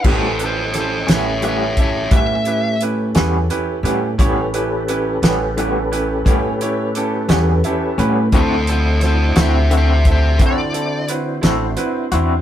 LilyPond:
<<
  \new Staff \with { instrumentName = "Lead electric guitar" } { \time 12/8 \key a \mixolydian \tempo 4. = 58 <a' c''>8 <a' c''>8 <a' c''>8 <cis'' e''>8 <cis'' e''>8 <cis'' e''>8 e''4 r2 | r1. | <a' c''>8 <a' c''>8 <a' c''>8 <c'' e''>8 <c'' e''>8 <c'' e''>8 d''4 r2 | }
  \new Staff \with { instrumentName = "Tonewheel organ" } { \time 12/8 \key a \mixolydian <cis' g' a'>1. | <cis' g' a' b'>1. | <d' e' fis' c''>1. | }
  \new Staff \with { instrumentName = "Grand piano" } { \time 12/8 \key a \mixolydian <cis' e' g' b'>8 <cis' e' g' b'>8 <cis' e' g' a'>8 <cis' e' g' b'>8 <cis' e' g' b'>8 <cis' e' g' a'>8 <cis' e' g' b'>8 <cis' e' g' b'>8 <cis' e' g' b'>8 <cis' e' g' b'>8 <cis' e' g' b'>8 <cis' e' g' b'>8 | <cis' e' g' cis''>8 <cis' e' g' b'>8 <cis' e' g' b'>8 <cis' e' g' b'>8 <cis' e' g' b'>8 <cis' e' g' b'>8 <cis' e' g' cis''>8 <cis' e' g' cis''>8 <cis' e' g' a'>8 <cis' e' g' b'>8 <cis' e' g' a' e''>8 <cis' e' g' b' b''>8 | <c' e' fis' a'>8 <c' e' fis' a'>8 <c' e' fis' a'>8 <c' e' fis' a'>8 <c' e' fis' a'>8 <c' e' fis' a'>8 <c' e' fis' a'>8 <c' e' fis' a'>8 <c' e' fis' b'>8 <c' e' fis' a'>8 <c' e' fis' b'>8 <c' e' fis' c''>8 | }
  \new Staff \with { instrumentName = "Clean electric guitar" } { \time 12/8 \key a \mixolydian <a, g b cis'>8 r4 <g b cis'>8 <a, g b cis'>8 r8 <a, g b cis'>8 r4 <g b cis'>8 r8 <g b cis'>8 | <a, g b cis'>8 r4 <g b cis'>8 <a, g b cis'>8 r8 <a, g b cis'>8 r4 <g b cis'>8 r8 <g b cis'>8 | <d c' e' fis'>8 r4 <c' e' fis'>8 <d c' e' fis'>8 r8 <d c' e' fis'>8 r4 <c' e' fis'>8 r8 <c' e' fis'>8 | }
  \new Staff \with { instrumentName = "Upright bass" } { \clef bass \time 12/8 \key a \mixolydian a,,4. a,,4. a,4. e,8 r8 a,8 | a,,4. a,,4. a,4. e,8 r8 a,8 | d,4. d,4. d4. a,,8 r8 e,8 | }
  \new DrumStaff \with { instrumentName = "Drums" } \drummode { \time 12/8 <cymc bd>8 hh8 <hh sn>8 <hh sn>8 hh8 <hh bd>8 <hh bd>8 hh8 hh8 <hh sn>8 hh8 hh8 | <hh bd>8 hh8 hh8 <hh sn>8 hh8 hh8 <hh bd>8 hh8 hh8 <hh sn>8 hh8 hh8 | <hh bd>8 hh8 <hh sn>8 <hh sn>8 hh8 <hh bd>8 <hh bd>8 hh8 hh8 <hh sn>8 hh8 hh8 | }
>>